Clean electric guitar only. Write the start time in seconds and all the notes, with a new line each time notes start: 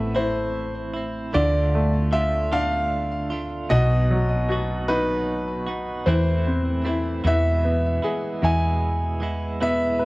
Already playing: E3 B3 C4 E4
0.15 A2 E3 C4 E4
0.94 C4 E4
1.33 D3 A3 D4 F4
2.11 D3 A3 D4 F4
2.52 D3 A3 D4 F4
3.30 A3 D4 F4
3.69 B2 F#3 B3 D#4 F#4
4.49 F#3 B3 D#4 F#4
4.89 B2 F#3 B3 D#4 F#4
5.67 B3 D#4 F#4
6.06 E3 A3 C4 E4
6.84 E3 A3 C4 E4
7.24 E2 B2 E3 G#3 B3 E4
8.02 E3 G#3 B3 E4
8.42 E2 B2 E3 G#3 B3 E4
9.20 E3 G#3 B3 E4
9.60 E2 B2 E3 G#3 B3 E4